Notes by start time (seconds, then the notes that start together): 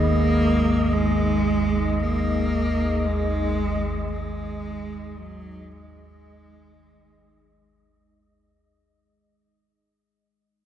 Already playing: G#1 D#2 G#3 A#3 D#4 G#4 D#5
0.93 G#3
2.00 A#3
3.06 G#3
4.12 G#3
5.19 F#3
5.72 G#3